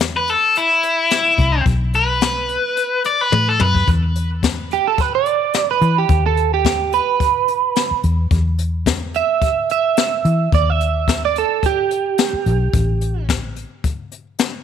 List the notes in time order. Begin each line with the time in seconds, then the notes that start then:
Already playing: E2
0.00 snare, closed hi-hat
0.17 B4
0.28 A4, closed hi-hat
0.55 E4, closed hi-hat
0.83 closed hi-hat
1.11 snare, closed hi-hat
1.38 C2, kick, closed hi-hat
1.66 B1, kick, closed hi-hat
1.94 B4, closed hi-hat
2.21 snare, closed hi-hat
2.49 closed hi-hat
2.77 closed hi-hat
3.04 D5, closed hi-hat
3.21 B4
3.32 A2, high tom
3.49 A4
3.60 F#2 B4, mid tom
3.75 kick
3.88 E2, kick, closed hi-hat
4.16 closed hi-hat
4.43 kick, snare, closed hi-hat
4.71 G4, closed hi-hat
4.87 A4
4.98 B4, kick, closed hi-hat
5.15 D5
5.26 closed hi-hat
5.54 snare, closed hi-hat
5.71 B4
5.81 E3, closed hi-hat
5.98 G4
6.09 D#2, kick, closed hi-hat
6.26 A4
6.37 closed hi-hat
6.54 G4
6.65 kick, snare, closed hi-hat
6.92 B4, closed hi-hat
7.20 kick, closed hi-hat
7.48 closed hi-hat
7.76 snare, closed hi-hat
7.91 muted fingered electric bass stroke
8.03 E2, closed hi-hat
8.31 E2, kick, closed hi-hat
8.59 closed hi-hat
8.86 kick, snare, closed hi-hat
9.14 E5, closed hi-hat
9.42 kick, closed hi-hat
9.70 E5, closed hi-hat
9.97 snare, closed hi-hat
10.25 E3, closed hi-hat
10.52 D#2 D5, kick, closed hi-hat
10.70 E5
10.81 closed hi-hat
11.08 kick, snare, closed hi-hat
11.25 D5
11.36 A4, closed hi-hat
11.63 G4, kick, closed hi-hat
11.91 closed hi-hat
12.18 snare, closed hi-hat
12.33 muted fingered electric bass stroke
12.46 B1, closed hi-hat
12.73 A1, kick, closed hi-hat
13.01 closed hi-hat
13.29 kick, snare, closed hi-hat
13.56 closed hi-hat
13.84 kick, closed hi-hat
14.12 closed hi-hat
14.39 snare, closed hi-hat